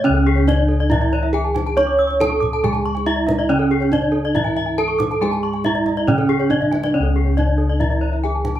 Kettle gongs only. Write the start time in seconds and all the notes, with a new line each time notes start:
Already playing: C#3
0.05 C#4
0.09 C#2
1.34 D4
1.77 C#5
2.20 D4
2.63 C#3
3.07 D4
3.49 C#4
4.36 G#2
4.79 D4
5.22 G#4
5.65 D4
6.08 C#3
6.95 C#4
7.00 C#2
7.38 D4
8.24 D4